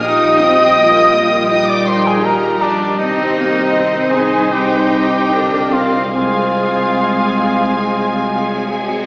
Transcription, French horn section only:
0.00 2.83 F4 medium
0.05 2.83 G3 medium
3.00 4.49 D#3 medium
3.00 4.49 C4 medium
4.53 6.12 G3 medium
4.53 6.12 C4 medium
6.14 9.01 G#3 medium
6.14 9.01 C4 medium

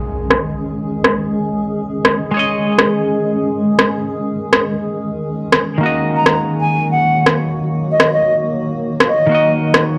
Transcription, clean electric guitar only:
0.00 2.30 G#3 medium
0.00 2.31 G#4 medium
0.00 2.33 C#5 medium
0.00 2.34 D#5 medium
2.31 5.79 G#3 medium
2.31 5.80 G#4 medium
2.37 5.82 C#5 medium
2.37 5.83 D#5 medium
5.78 9.25 D#3 medium
5.78 9.27 A#3 medium
5.83 9.29 F#4 medium
5.83 9.30 D#5 medium
9.27 9.98 D#3 medium
9.27 9.98 A#3 medium
9.31 9.98 F#4 medium
9.31 9.98 D#5 medium

